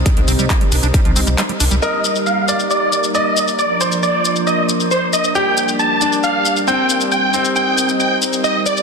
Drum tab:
HH |xxoxxxoxxxoxxxox|----------------|----------------|----------------|
SH |x-xxx-xxx-xxx-xx|x-xxx-xxx-xxx-xx|x-xxx-xxx-xxx-xx|x-xxx-xxx-xxx-xx|
CP |----x-------x---|----------------|----------------|----------------|
BD |o---o---o-------|----------------|----------------|----------------|

HH |----------------|
SH |x-xxx-xxx-xxx-xx|
CP |----------------|
BD |----------------|